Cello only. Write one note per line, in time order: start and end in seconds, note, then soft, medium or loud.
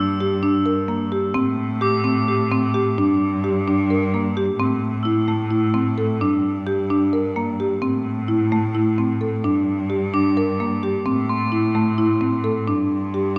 0.00 1.37 G2 medium
1.36 2.99 A2 medium
2.97 4.55 G2 medium
4.59 6.22 A2 medium
6.21 7.84 G2 medium
7.82 9.46 A2 medium
9.44 11.08 G2 medium
11.06 12.69 A2 medium
12.68 13.39 G2 medium